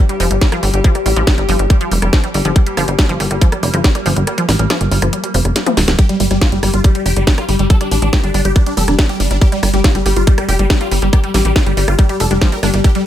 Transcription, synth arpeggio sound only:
0.09 0.14 G3 medium
0.20 0.27 F3 loud
0.31 0.38 G3 medium
0.41 0.46 G3 medium
0.52 0.59 F3 loud
0.63 0.70 G3 medium
0.74 0.78 G3 medium
0.84 0.92 F3 loud
0.95 1.02 G3 medium
1.06 1.10 G3 medium
1.16 1.24 F3 loud
1.27 1.34 G3 medium
1.38 1.42 G3 medium
1.49 1.56 F3 loud
1.59 1.67 G3 medium
1.70 1.74 G3 medium
1.81 1.88 F3 loud
1.91 1.99 G3 medium
2.02 2.07 G3 medium
2.13 2.20 F3 loud
2.24 2.31 G3 medium
2.34 2.39 G3 medium
2.45 2.52 F3 loud
2.56 2.63 G3 medium
2.67 2.71 G3 medium
2.77 2.84 F3 loud
2.88 2.95 G3 medium
2.99 3.03 G3 medium
3.09 3.17 F3 loud
3.20 3.27 G3 medium
3.31 3.35 G3 medium
3.42 3.49 F3 loud
3.52 3.59 G3 medium
3.63 3.67 G3 medium
3.74 3.81 F3 loud
3.84 3.92 G3 medium
3.95 3.99 G3 medium
4.06 4.13 F3 loud
4.16 4.24 G3 medium
4.27 4.32 G3 medium
4.38 4.45 F3 loud
4.49 4.56 G3 medium
4.59 4.64 G3 medium
4.70 4.77 F3 loud
4.81 4.88 G3 medium
4.92 4.96 G3 medium
5.02 5.09 F3 loud
5.13 5.20 G3 medium
5.24 5.28 G3 medium
5.34 5.42 F3 loud
5.45 5.52 G3 medium
5.56 5.60 G3 medium
5.67 5.74 F3 loud
5.77 5.84 G3 medium
5.88 5.92 G3 medium
5.99 6.06 G3 medium
6.09 6.14 G3 medium
6.20 6.27 G3 medium
6.31 6.38 G3 medium
6.42 6.46 G3 medium
6.52 6.59 G3 medium
6.63 6.70 G3 medium
6.74 6.78 G3 medium
6.84 6.92 G3 medium
6.95 7.02 G3 medium
7.06 7.10 G3 medium
7.17 7.24 G3 medium
7.27 7.34 G3 medium
7.38 7.42 G3 medium
7.49 7.56 G3 medium
7.59 7.67 G3 medium
7.70 7.74 G3 medium
7.81 7.88 G3 medium
7.92 7.99 G3 medium
8.02 8.07 G3 medium
8.13 8.20 G3 medium
8.24 8.31 G3 medium
8.34 8.39 G3 medium
8.45 8.52 G3 medium
8.56 8.63 G3 medium
8.67 8.71 G3 medium
8.77 8.84 G3 medium
8.88 8.95 G3 medium
8.99 9.03 G3 medium
9.09 9.17 G3 medium
9.20 9.27 G3 medium
9.31 9.35 G3 medium
9.42 9.49 G3 medium
9.52 9.59 G3 medium
9.63 9.67 G3 medium
9.74 9.81 G3 medium
9.84 9.92 G3 medium
9.95 9.99 G3 medium
10.06 10.13 G3 medium
10.16 10.24 G3 medium
10.27 10.32 G3 medium
10.38 10.45 G3 medium
10.49 10.56 G3 medium
10.59 10.64 G3 medium
10.70 10.77 G3 medium
10.81 10.88 G3 medium
10.92 10.96 G3 medium
11.02 11.09 G3 medium
11.13 11.20 G3 medium
11.24 11.28 G3 medium
11.34 11.42 G3 medium
11.45 11.52 G3 medium
11.56 11.60 G3 medium
11.67 11.74 G3 medium
11.77 11.84 G3 medium
11.88 11.92 G3 medium
11.99 12.06 G3 medium
12.09 12.17 G3 medium
12.20 12.27 G3 medium
12.31 12.38 D4 medium
12.42 12.49 F3 loud
12.52 12.59 G3 medium
12.63 12.67 D4 loud
12.74 12.81 G3 medium
12.84 12.89 G3 medium
12.95 13.02 G3 medium

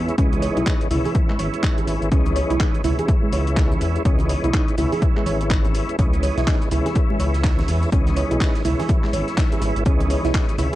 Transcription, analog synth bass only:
0.00 0.11 E2 medium
0.18 0.48 C#2 loud
0.57 0.63 B1 medium
0.91 1.00 C#2 medium
1.39 1.48 G#1 medium
1.87 1.96 G#1 medium
2.02 2.08 G#1 loud
2.12 2.41 C#2 loud
2.50 2.56 B1 medium
2.84 2.93 C#2 loud
3.33 3.75 C#2 medium
3.81 3.98 E2 medium
4.05 4.35 C#2 loud
4.44 4.50 B1 medium
4.78 4.87 C#2 loud
5.26 5.80 G#1 medium
5.99 6.29 C#2 loud
6.38 6.43 B1 medium
6.71 6.80 C#2 loud
7.20 7.62 C#2 medium
7.68 7.85 E2 medium
7.92 8.22 C#2 loud
8.31 8.37 B1 medium
8.65 8.74 C#2 medium
9.13 9.22 G#1 medium
9.62 9.71 G#1 medium
9.76 9.82 G#1 loud
9.86 10.16 C#2 loud
10.25 10.31 B1 medium
10.59 10.67 C#2 loud

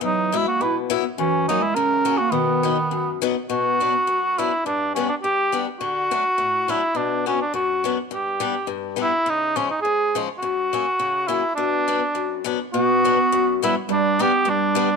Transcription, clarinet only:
0.04 0.35 F#3 medium
0.34 0.47 G#3 medium
0.48 0.65 A#3 medium
0.63 0.77 E4 medium
1.20 1.47 E3 medium
1.49 1.62 F#3 medium
1.61 1.77 G#3 medium
1.76 2.22 C#4 medium
2.20 2.33 A#3 medium
2.32 3.21 D#3 medium
12.74 13.58 B3 medium
13.65 13.76 G3 medium
13.89 14.23 G3 loud
14.21 14.49 B3 medium
14.47 14.96 G3 medium

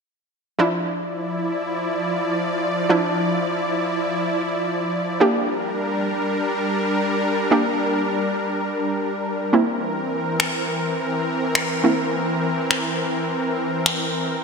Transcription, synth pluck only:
0.59 2.86 F3 medium
0.59 2.86 D4 medium
0.59 2.86 E4 medium
2.89 5.16 F3 medium
2.89 5.17 D4 medium
2.89 5.17 E4 medium
5.20 7.47 A#3 medium
5.20 7.47 D4 medium
5.20 7.48 G4 medium
7.51 9.49 A#3 medium
7.51 9.49 D4 medium
7.51 9.50 G4 medium
9.53 11.80 A#3 medium
9.53 11.80 C4 medium
9.53 11.80 E4 medium
11.84 14.11 A#3 medium
11.84 14.11 C4 medium
11.84 14.11 E4 medium

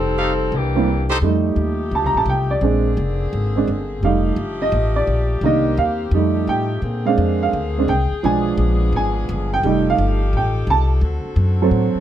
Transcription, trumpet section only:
0.17 0.33 D#4 medium
0.17 0.32 G4 medium
0.17 0.33 A4 medium
0.17 0.33 F5 medium
1.09 1.18 D#4 medium
1.09 1.17 G4 medium
1.09 1.17 A4 medium
1.09 1.17 C5 loud

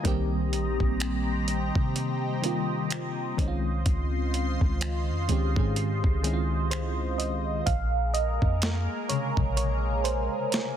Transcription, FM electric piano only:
0.03 1.63 D#3 loud
0.03 1.64 G3 loud
0.03 1.64 A#3 loud
0.03 1.65 C4 loud
0.03 1.65 G4 loud
2.42 3.24 D#3 medium
2.42 3.24 G3 medium
2.42 3.25 A#3 medium
2.42 3.25 C4 medium
2.42 3.25 F4 medium
3.37 4.97 D#3 medium
3.37 4.97 G#3 medium
3.37 4.98 C4 medium
3.37 4.98 C#4 medium
3.37 3.47 D#4 medium
3.48 5.02 F4 loud
5.28 5.51 D#3 medium
5.28 5.51 G#3 medium
5.28 5.52 C4 medium
5.28 5.52 C#4 medium
5.32 5.53 G4 medium
5.56 6.13 D#3 medium
5.56 6.13 G#3 medium
5.56 6.14 C4 medium
5.56 6.14 C#4 medium
5.56 6.15 G#4 medium
6.23 7.45 D#3 medium
6.23 7.45 G#3 medium
6.23 7.46 C4 medium
6.23 7.46 C#4 medium
6.23 6.33 E4 medium
6.23 6.73 G#4 medium
6.33 7.50 F4 medium
6.71 7.15 C5 medium
7.18 7.68 D#5 medium
7.66 8.11 F5 loud
8.14 9.05 D#5 loud
9.09 9.77 C3 medium
9.09 9.76 C#3 medium
9.09 9.76 G#3 medium
9.09 9.56 C#5 medium
9.57 10.06 C#5 medium
10.04 10.77 C5 medium

